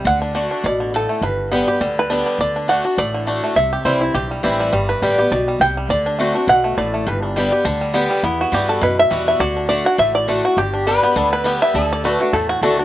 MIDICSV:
0, 0, Header, 1, 5, 480
1, 0, Start_track
1, 0, Key_signature, 1, "major"
1, 0, Tempo, 292113
1, 95, Time_signature, 4, 2, 24, 8
1, 21109, End_track
2, 0, Start_track
2, 0, Title_t, "Resonator guitar played with a steel bar"
2, 0, Program_c, 0, 25
2, 13540, Note_on_c, 0, 64, 86
2, 15392, Note_off_c, 0, 64, 0
2, 15446, Note_on_c, 0, 66, 97
2, 17306, Note_off_c, 0, 66, 0
2, 17374, Note_on_c, 0, 67, 97
2, 17858, Note_off_c, 0, 67, 0
2, 17864, Note_on_c, 0, 71, 108
2, 19236, Note_off_c, 0, 71, 0
2, 19307, Note_on_c, 0, 69, 103
2, 20945, Note_off_c, 0, 69, 0
2, 21109, End_track
3, 0, Start_track
3, 0, Title_t, "Five-string banjo"
3, 0, Program_c, 1, 105
3, 113, Note_on_c, 1, 78, 110
3, 349, Note_off_c, 1, 78, 0
3, 356, Note_on_c, 1, 62, 57
3, 573, Note_off_c, 1, 62, 0
3, 573, Note_on_c, 1, 62, 61
3, 839, Note_off_c, 1, 62, 0
3, 839, Note_on_c, 1, 62, 56
3, 1077, Note_off_c, 1, 62, 0
3, 1084, Note_on_c, 1, 74, 101
3, 1318, Note_on_c, 1, 50, 58
3, 1562, Note_off_c, 1, 74, 0
3, 1575, Note_on_c, 1, 69, 87
3, 1794, Note_on_c, 1, 57, 60
3, 1969, Note_off_c, 1, 50, 0
3, 2010, Note_off_c, 1, 57, 0
3, 2020, Note_off_c, 1, 69, 0
3, 2026, Note_on_c, 1, 71, 89
3, 2489, Note_on_c, 1, 59, 60
3, 2713, Note_off_c, 1, 71, 0
3, 2758, Note_on_c, 1, 67, 56
3, 2974, Note_on_c, 1, 55, 66
3, 3183, Note_off_c, 1, 59, 0
3, 3271, Note_on_c, 1, 71, 94
3, 3408, Note_off_c, 1, 67, 0
3, 3449, Note_on_c, 1, 62, 61
3, 3665, Note_off_c, 1, 55, 0
3, 3718, Note_on_c, 1, 55, 59
3, 3929, Note_off_c, 1, 62, 0
3, 3931, Note_off_c, 1, 55, 0
3, 3947, Note_off_c, 1, 71, 0
3, 3954, Note_on_c, 1, 74, 108
3, 4208, Note_on_c, 1, 62, 58
3, 4414, Note_off_c, 1, 74, 0
3, 4421, Note_on_c, 1, 78, 97
3, 4662, Note_off_c, 1, 62, 0
3, 4681, Note_on_c, 1, 62, 60
3, 4898, Note_off_c, 1, 78, 0
3, 4904, Note_on_c, 1, 74, 97
3, 5166, Note_on_c, 1, 50, 60
3, 5329, Note_off_c, 1, 62, 0
3, 5380, Note_on_c, 1, 62, 61
3, 5646, Note_on_c, 1, 57, 62
3, 5811, Note_off_c, 1, 50, 0
3, 5848, Note_off_c, 1, 62, 0
3, 5854, Note_off_c, 1, 57, 0
3, 5855, Note_on_c, 1, 76, 106
3, 5885, Note_off_c, 1, 74, 0
3, 6124, Note_on_c, 1, 67, 60
3, 6328, Note_on_c, 1, 72, 88
3, 6346, Note_off_c, 1, 76, 0
3, 6589, Note_on_c, 1, 64, 59
3, 6770, Note_off_c, 1, 67, 0
3, 6775, Note_off_c, 1, 72, 0
3, 6811, Note_on_c, 1, 67, 76
3, 7084, Note_on_c, 1, 55, 58
3, 7243, Note_off_c, 1, 64, 0
3, 7274, Note_off_c, 1, 67, 0
3, 7294, Note_on_c, 1, 67, 60
3, 7543, Note_off_c, 1, 55, 0
3, 7562, Note_on_c, 1, 55, 62
3, 7749, Note_off_c, 1, 55, 0
3, 7768, Note_on_c, 1, 55, 77
3, 7771, Note_off_c, 1, 67, 0
3, 8034, Note_on_c, 1, 71, 91
3, 8237, Note_off_c, 1, 55, 0
3, 8256, Note_on_c, 1, 55, 61
3, 8528, Note_on_c, 1, 67, 59
3, 8731, Note_off_c, 1, 71, 0
3, 8738, Note_on_c, 1, 74, 93
3, 8946, Note_off_c, 1, 55, 0
3, 9004, Note_on_c, 1, 55, 62
3, 9173, Note_off_c, 1, 67, 0
3, 9212, Note_off_c, 1, 74, 0
3, 9219, Note_on_c, 1, 79, 108
3, 9466, Note_off_c, 1, 55, 0
3, 9486, Note_on_c, 1, 55, 62
3, 9694, Note_off_c, 1, 55, 0
3, 9696, Note_on_c, 1, 74, 99
3, 9708, Note_off_c, 1, 79, 0
3, 9960, Note_on_c, 1, 62, 56
3, 10166, Note_on_c, 1, 57, 62
3, 10417, Note_off_c, 1, 62, 0
3, 10436, Note_on_c, 1, 62, 58
3, 10662, Note_off_c, 1, 62, 0
3, 10669, Note_on_c, 1, 78, 105
3, 10681, Note_off_c, 1, 74, 0
3, 10861, Note_off_c, 1, 57, 0
3, 10913, Note_on_c, 1, 57, 60
3, 11129, Note_off_c, 1, 78, 0
3, 11136, Note_on_c, 1, 74, 90
3, 11380, Note_off_c, 1, 57, 0
3, 11400, Note_on_c, 1, 57, 59
3, 11579, Note_off_c, 1, 74, 0
3, 11611, Note_off_c, 1, 57, 0
3, 11633, Note_on_c, 1, 71, 81
3, 11865, Note_off_c, 1, 71, 0
3, 11871, Note_on_c, 1, 62, 60
3, 12095, Note_on_c, 1, 55, 60
3, 12364, Note_on_c, 1, 67, 58
3, 12525, Note_off_c, 1, 62, 0
3, 12569, Note_on_c, 1, 62, 68
3, 12786, Note_off_c, 1, 55, 0
3, 12838, Note_on_c, 1, 55, 63
3, 13012, Note_off_c, 1, 67, 0
3, 13047, Note_on_c, 1, 59, 64
3, 13263, Note_off_c, 1, 62, 0
3, 13297, Note_off_c, 1, 55, 0
3, 13317, Note_on_c, 1, 55, 61
3, 13516, Note_off_c, 1, 59, 0
3, 13531, Note_off_c, 1, 55, 0
3, 13536, Note_on_c, 1, 59, 64
3, 13817, Note_on_c, 1, 66, 78
3, 14027, Note_off_c, 1, 66, 0
3, 14038, Note_on_c, 1, 67, 85
3, 14227, Note_off_c, 1, 59, 0
3, 14281, Note_on_c, 1, 69, 82
3, 14299, Note_off_c, 1, 67, 0
3, 14500, Note_off_c, 1, 69, 0
3, 14509, Note_on_c, 1, 71, 91
3, 14773, Note_off_c, 1, 71, 0
3, 14780, Note_on_c, 1, 76, 102
3, 14966, Note_on_c, 1, 55, 74
3, 15217, Note_off_c, 1, 76, 0
3, 15248, Note_on_c, 1, 76, 97
3, 15450, Note_off_c, 1, 55, 0
3, 15451, Note_on_c, 1, 74, 107
3, 15463, Note_off_c, 1, 76, 0
3, 15719, Note_on_c, 1, 62, 56
3, 15899, Note_off_c, 1, 74, 0
3, 15918, Note_on_c, 1, 74, 97
3, 16199, Note_off_c, 1, 62, 0
3, 16201, Note_off_c, 1, 74, 0
3, 16206, Note_on_c, 1, 78, 106
3, 16402, Note_off_c, 1, 78, 0
3, 16418, Note_on_c, 1, 76, 99
3, 16675, Note_on_c, 1, 74, 109
3, 16691, Note_off_c, 1, 76, 0
3, 16902, Note_on_c, 1, 57, 73
3, 17170, Note_on_c, 1, 66, 86
3, 17173, Note_off_c, 1, 74, 0
3, 17379, Note_off_c, 1, 57, 0
3, 17384, Note_on_c, 1, 67, 92
3, 17386, Note_off_c, 1, 66, 0
3, 17641, Note_on_c, 1, 62, 60
3, 17858, Note_on_c, 1, 55, 60
3, 18075, Note_off_c, 1, 67, 0
3, 18133, Note_on_c, 1, 59, 60
3, 18293, Note_off_c, 1, 62, 0
3, 18348, Note_on_c, 1, 62, 67
3, 18551, Note_off_c, 1, 55, 0
3, 18607, Note_off_c, 1, 62, 0
3, 18613, Note_on_c, 1, 71, 107
3, 18779, Note_off_c, 1, 59, 0
3, 18829, Note_on_c, 1, 59, 63
3, 19056, Note_off_c, 1, 71, 0
3, 19096, Note_on_c, 1, 76, 114
3, 19304, Note_off_c, 1, 59, 0
3, 19314, Note_on_c, 1, 62, 65
3, 19585, Note_off_c, 1, 76, 0
3, 19596, Note_on_c, 1, 74, 104
3, 19793, Note_off_c, 1, 74, 0
3, 19800, Note_on_c, 1, 71, 99
3, 20000, Note_off_c, 1, 62, 0
3, 20061, Note_on_c, 1, 57, 67
3, 20259, Note_off_c, 1, 71, 0
3, 20266, Note_on_c, 1, 69, 95
3, 20522, Note_off_c, 1, 69, 0
3, 20528, Note_on_c, 1, 66, 89
3, 20704, Note_off_c, 1, 57, 0
3, 20747, Note_off_c, 1, 66, 0
3, 20753, Note_on_c, 1, 69, 87
3, 21015, Note_off_c, 1, 69, 0
3, 21022, Note_on_c, 1, 62, 60
3, 21109, Note_off_c, 1, 62, 0
3, 21109, End_track
4, 0, Start_track
4, 0, Title_t, "Steel-string acoustic guitar"
4, 0, Program_c, 2, 25
4, 85, Note_on_c, 2, 50, 89
4, 551, Note_off_c, 2, 50, 0
4, 571, Note_on_c, 2, 50, 87
4, 580, Note_on_c, 2, 57, 80
4, 585, Note_on_c, 2, 62, 92
4, 593, Note_on_c, 2, 66, 87
4, 1030, Note_off_c, 2, 50, 0
4, 1035, Note_off_c, 2, 57, 0
4, 1038, Note_off_c, 2, 62, 0
4, 1042, Note_off_c, 2, 66, 0
4, 1052, Note_on_c, 2, 47, 93
4, 1511, Note_off_c, 2, 47, 0
4, 1546, Note_on_c, 2, 45, 89
4, 1997, Note_off_c, 2, 45, 0
4, 2007, Note_on_c, 2, 43, 89
4, 2489, Note_on_c, 2, 50, 83
4, 2494, Note_on_c, 2, 55, 90
4, 2506, Note_on_c, 2, 59, 98
4, 2510, Note_on_c, 2, 67, 101
4, 2734, Note_off_c, 2, 67, 0
4, 2746, Note_off_c, 2, 50, 0
4, 2748, Note_off_c, 2, 55, 0
4, 2753, Note_on_c, 2, 67, 58
4, 2754, Note_off_c, 2, 59, 0
4, 2781, Note_on_c, 2, 59, 52
4, 2926, Note_off_c, 2, 43, 0
4, 2960, Note_off_c, 2, 67, 0
4, 2971, Note_on_c, 2, 50, 99
4, 2974, Note_off_c, 2, 59, 0
4, 3428, Note_off_c, 2, 50, 0
4, 3447, Note_on_c, 2, 50, 94
4, 3461, Note_on_c, 2, 55, 87
4, 3466, Note_on_c, 2, 59, 92
4, 3469, Note_on_c, 2, 67, 96
4, 3907, Note_off_c, 2, 50, 0
4, 3914, Note_off_c, 2, 55, 0
4, 3917, Note_off_c, 2, 59, 0
4, 3918, Note_off_c, 2, 67, 0
4, 3952, Note_on_c, 2, 50, 83
4, 4384, Note_off_c, 2, 50, 0
4, 4403, Note_on_c, 2, 50, 80
4, 4419, Note_on_c, 2, 57, 89
4, 4426, Note_on_c, 2, 62, 87
4, 4428, Note_on_c, 2, 66, 100
4, 4655, Note_off_c, 2, 66, 0
4, 4662, Note_off_c, 2, 50, 0
4, 4670, Note_off_c, 2, 57, 0
4, 4673, Note_off_c, 2, 62, 0
4, 4674, Note_on_c, 2, 66, 59
4, 4697, Note_on_c, 2, 62, 45
4, 4880, Note_off_c, 2, 66, 0
4, 4891, Note_off_c, 2, 62, 0
4, 4901, Note_on_c, 2, 45, 99
4, 5370, Note_on_c, 2, 50, 84
4, 5378, Note_on_c, 2, 57, 88
4, 5385, Note_on_c, 2, 62, 86
4, 5395, Note_on_c, 2, 66, 92
4, 5812, Note_off_c, 2, 45, 0
4, 5828, Note_off_c, 2, 50, 0
4, 5832, Note_off_c, 2, 57, 0
4, 5835, Note_off_c, 2, 62, 0
4, 5840, Note_off_c, 2, 66, 0
4, 5870, Note_on_c, 2, 48, 87
4, 6325, Note_on_c, 2, 52, 84
4, 6341, Note_on_c, 2, 55, 92
4, 6346, Note_on_c, 2, 60, 94
4, 6349, Note_on_c, 2, 64, 96
4, 6578, Note_off_c, 2, 64, 0
4, 6582, Note_off_c, 2, 52, 0
4, 6590, Note_off_c, 2, 55, 0
4, 6593, Note_off_c, 2, 60, 0
4, 6598, Note_on_c, 2, 64, 57
4, 6623, Note_on_c, 2, 60, 49
4, 6776, Note_off_c, 2, 48, 0
4, 6801, Note_off_c, 2, 64, 0
4, 6814, Note_off_c, 2, 60, 0
4, 6820, Note_on_c, 2, 43, 101
4, 7281, Note_on_c, 2, 52, 86
4, 7288, Note_on_c, 2, 55, 90
4, 7297, Note_on_c, 2, 60, 91
4, 7309, Note_on_c, 2, 64, 95
4, 7732, Note_off_c, 2, 43, 0
4, 7743, Note_off_c, 2, 52, 0
4, 7747, Note_off_c, 2, 55, 0
4, 7751, Note_off_c, 2, 60, 0
4, 7757, Note_off_c, 2, 64, 0
4, 7764, Note_on_c, 2, 43, 87
4, 8255, Note_on_c, 2, 50, 85
4, 8261, Note_on_c, 2, 55, 84
4, 8271, Note_on_c, 2, 59, 95
4, 8273, Note_on_c, 2, 67, 88
4, 8496, Note_off_c, 2, 67, 0
4, 8508, Note_off_c, 2, 50, 0
4, 8510, Note_off_c, 2, 55, 0
4, 8515, Note_off_c, 2, 59, 0
4, 8516, Note_on_c, 2, 67, 65
4, 8545, Note_on_c, 2, 59, 54
4, 8683, Note_off_c, 2, 43, 0
4, 8720, Note_off_c, 2, 67, 0
4, 8735, Note_off_c, 2, 59, 0
4, 8745, Note_on_c, 2, 47, 95
4, 9196, Note_off_c, 2, 47, 0
4, 9228, Note_on_c, 2, 48, 90
4, 9677, Note_off_c, 2, 48, 0
4, 9701, Note_on_c, 2, 50, 91
4, 10159, Note_off_c, 2, 50, 0
4, 10179, Note_on_c, 2, 50, 89
4, 10186, Note_on_c, 2, 57, 83
4, 10191, Note_on_c, 2, 60, 87
4, 10198, Note_on_c, 2, 66, 98
4, 10406, Note_off_c, 2, 66, 0
4, 10426, Note_on_c, 2, 66, 58
4, 10430, Note_off_c, 2, 50, 0
4, 10433, Note_off_c, 2, 57, 0
4, 10436, Note_off_c, 2, 60, 0
4, 10453, Note_on_c, 2, 60, 51
4, 10636, Note_off_c, 2, 66, 0
4, 10644, Note_on_c, 2, 47, 99
4, 10649, Note_off_c, 2, 60, 0
4, 11105, Note_off_c, 2, 47, 0
4, 11145, Note_on_c, 2, 45, 91
4, 11596, Note_off_c, 2, 45, 0
4, 11610, Note_on_c, 2, 43, 92
4, 12098, Note_on_c, 2, 50, 81
4, 12109, Note_on_c, 2, 55, 99
4, 12120, Note_on_c, 2, 59, 91
4, 12123, Note_on_c, 2, 67, 96
4, 12336, Note_off_c, 2, 67, 0
4, 12350, Note_off_c, 2, 50, 0
4, 12355, Note_off_c, 2, 55, 0
4, 12356, Note_on_c, 2, 67, 68
4, 12361, Note_off_c, 2, 59, 0
4, 12380, Note_on_c, 2, 59, 50
4, 12528, Note_off_c, 2, 43, 0
4, 12561, Note_off_c, 2, 67, 0
4, 12573, Note_off_c, 2, 59, 0
4, 12573, Note_on_c, 2, 50, 103
4, 13021, Note_off_c, 2, 50, 0
4, 13041, Note_on_c, 2, 50, 87
4, 13049, Note_on_c, 2, 55, 99
4, 13058, Note_on_c, 2, 59, 94
4, 13060, Note_on_c, 2, 67, 110
4, 13504, Note_off_c, 2, 50, 0
4, 13509, Note_off_c, 2, 55, 0
4, 13513, Note_off_c, 2, 59, 0
4, 13514, Note_off_c, 2, 67, 0
4, 13532, Note_on_c, 2, 40, 89
4, 13996, Note_on_c, 2, 52, 90
4, 14003, Note_on_c, 2, 55, 82
4, 14008, Note_on_c, 2, 59, 92
4, 14016, Note_on_c, 2, 66, 94
4, 14450, Note_off_c, 2, 40, 0
4, 14463, Note_off_c, 2, 52, 0
4, 14466, Note_off_c, 2, 55, 0
4, 14469, Note_off_c, 2, 59, 0
4, 14473, Note_off_c, 2, 66, 0
4, 14483, Note_on_c, 2, 47, 96
4, 14959, Note_on_c, 2, 52, 84
4, 14968, Note_on_c, 2, 55, 85
4, 14971, Note_on_c, 2, 59, 96
4, 14985, Note_on_c, 2, 66, 104
4, 15406, Note_off_c, 2, 47, 0
4, 15425, Note_off_c, 2, 52, 0
4, 15429, Note_off_c, 2, 55, 0
4, 15431, Note_off_c, 2, 59, 0
4, 15438, Note_off_c, 2, 66, 0
4, 15445, Note_on_c, 2, 50, 91
4, 15902, Note_off_c, 2, 50, 0
4, 15920, Note_on_c, 2, 57, 87
4, 15922, Note_on_c, 2, 50, 85
4, 15936, Note_on_c, 2, 62, 92
4, 15937, Note_on_c, 2, 66, 90
4, 16157, Note_off_c, 2, 66, 0
4, 16177, Note_on_c, 2, 66, 65
4, 16179, Note_off_c, 2, 62, 0
4, 16183, Note_off_c, 2, 57, 0
4, 16184, Note_off_c, 2, 50, 0
4, 16199, Note_on_c, 2, 62, 48
4, 16394, Note_off_c, 2, 66, 0
4, 16404, Note_on_c, 2, 45, 98
4, 16405, Note_off_c, 2, 62, 0
4, 16885, Note_on_c, 2, 50, 82
4, 16899, Note_on_c, 2, 62, 83
4, 16900, Note_on_c, 2, 57, 88
4, 16911, Note_on_c, 2, 66, 109
4, 17143, Note_off_c, 2, 66, 0
4, 17146, Note_off_c, 2, 50, 0
4, 17153, Note_off_c, 2, 62, 0
4, 17154, Note_off_c, 2, 57, 0
4, 17162, Note_on_c, 2, 66, 60
4, 17195, Note_on_c, 2, 62, 55
4, 17328, Note_off_c, 2, 45, 0
4, 17367, Note_off_c, 2, 66, 0
4, 17383, Note_on_c, 2, 43, 87
4, 17384, Note_off_c, 2, 62, 0
4, 17858, Note_on_c, 2, 50, 91
4, 17865, Note_on_c, 2, 55, 85
4, 17869, Note_on_c, 2, 59, 92
4, 17879, Note_on_c, 2, 67, 98
4, 18103, Note_off_c, 2, 67, 0
4, 18113, Note_off_c, 2, 50, 0
4, 18117, Note_off_c, 2, 55, 0
4, 18119, Note_off_c, 2, 59, 0
4, 18123, Note_on_c, 2, 67, 60
4, 18154, Note_on_c, 2, 59, 48
4, 18298, Note_off_c, 2, 43, 0
4, 18328, Note_off_c, 2, 67, 0
4, 18339, Note_on_c, 2, 50, 99
4, 18343, Note_off_c, 2, 59, 0
4, 18782, Note_off_c, 2, 50, 0
4, 18802, Note_on_c, 2, 50, 94
4, 18817, Note_on_c, 2, 55, 89
4, 18821, Note_on_c, 2, 59, 97
4, 18827, Note_on_c, 2, 67, 102
4, 19268, Note_off_c, 2, 50, 0
4, 19276, Note_off_c, 2, 55, 0
4, 19278, Note_off_c, 2, 59, 0
4, 19281, Note_off_c, 2, 67, 0
4, 19302, Note_on_c, 2, 50, 92
4, 19765, Note_off_c, 2, 50, 0
4, 19785, Note_on_c, 2, 50, 83
4, 19798, Note_on_c, 2, 57, 80
4, 19802, Note_on_c, 2, 62, 96
4, 19810, Note_on_c, 2, 66, 96
4, 20030, Note_off_c, 2, 66, 0
4, 20038, Note_off_c, 2, 50, 0
4, 20044, Note_off_c, 2, 57, 0
4, 20046, Note_off_c, 2, 62, 0
4, 20050, Note_on_c, 2, 66, 63
4, 20078, Note_on_c, 2, 62, 51
4, 20253, Note_off_c, 2, 66, 0
4, 20267, Note_off_c, 2, 62, 0
4, 20269, Note_on_c, 2, 45, 92
4, 20746, Note_on_c, 2, 50, 85
4, 20754, Note_on_c, 2, 57, 91
4, 20761, Note_on_c, 2, 62, 90
4, 20774, Note_on_c, 2, 66, 102
4, 20994, Note_off_c, 2, 66, 0
4, 20999, Note_off_c, 2, 50, 0
4, 21003, Note_off_c, 2, 57, 0
4, 21006, Note_off_c, 2, 62, 0
4, 21014, Note_on_c, 2, 66, 53
4, 21034, Note_on_c, 2, 62, 46
4, 21109, Note_off_c, 2, 45, 0
4, 21109, Note_off_c, 2, 62, 0
4, 21109, Note_off_c, 2, 66, 0
4, 21109, End_track
5, 0, Start_track
5, 0, Title_t, "Upright bass"
5, 0, Program_c, 3, 32
5, 76, Note_on_c, 3, 38, 95
5, 748, Note_off_c, 3, 38, 0
5, 1044, Note_on_c, 3, 33, 93
5, 1713, Note_off_c, 3, 33, 0
5, 1994, Note_on_c, 3, 31, 93
5, 2666, Note_off_c, 3, 31, 0
5, 2969, Note_on_c, 3, 38, 87
5, 3635, Note_off_c, 3, 38, 0
5, 3920, Note_on_c, 3, 38, 86
5, 4589, Note_off_c, 3, 38, 0
5, 4889, Note_on_c, 3, 33, 90
5, 5555, Note_off_c, 3, 33, 0
5, 5843, Note_on_c, 3, 36, 92
5, 6178, Note_off_c, 3, 36, 0
5, 6325, Note_on_c, 3, 36, 84
5, 6734, Note_off_c, 3, 36, 0
5, 6807, Note_on_c, 3, 35, 88
5, 7216, Note_off_c, 3, 35, 0
5, 7293, Note_on_c, 3, 33, 86
5, 7699, Note_off_c, 3, 33, 0
5, 7772, Note_on_c, 3, 31, 96
5, 8104, Note_off_c, 3, 31, 0
5, 8248, Note_on_c, 3, 33, 84
5, 8656, Note_off_c, 3, 33, 0
5, 8728, Note_on_c, 3, 35, 88
5, 9136, Note_off_c, 3, 35, 0
5, 9198, Note_on_c, 3, 36, 83
5, 9610, Note_off_c, 3, 36, 0
5, 9677, Note_on_c, 3, 38, 92
5, 10347, Note_off_c, 3, 38, 0
5, 10637, Note_on_c, 3, 35, 87
5, 11050, Note_off_c, 3, 35, 0
5, 11124, Note_on_c, 3, 33, 86
5, 11535, Note_off_c, 3, 33, 0
5, 11610, Note_on_c, 3, 31, 98
5, 12276, Note_off_c, 3, 31, 0
5, 12565, Note_on_c, 3, 38, 91
5, 13233, Note_off_c, 3, 38, 0
5, 13526, Note_on_c, 3, 40, 90
5, 13861, Note_off_c, 3, 40, 0
5, 14004, Note_on_c, 3, 43, 87
5, 14415, Note_off_c, 3, 43, 0
5, 14485, Note_on_c, 3, 42, 90
5, 14897, Note_off_c, 3, 42, 0
5, 14966, Note_on_c, 3, 40, 84
5, 15377, Note_off_c, 3, 40, 0
5, 15437, Note_on_c, 3, 38, 88
5, 16109, Note_off_c, 3, 38, 0
5, 16403, Note_on_c, 3, 33, 91
5, 17074, Note_off_c, 3, 33, 0
5, 17364, Note_on_c, 3, 31, 94
5, 18035, Note_off_c, 3, 31, 0
5, 18333, Note_on_c, 3, 38, 90
5, 19001, Note_off_c, 3, 38, 0
5, 19294, Note_on_c, 3, 38, 92
5, 19962, Note_off_c, 3, 38, 0
5, 20253, Note_on_c, 3, 40, 86
5, 20664, Note_off_c, 3, 40, 0
5, 20730, Note_on_c, 3, 38, 84
5, 21109, Note_off_c, 3, 38, 0
5, 21109, End_track
0, 0, End_of_file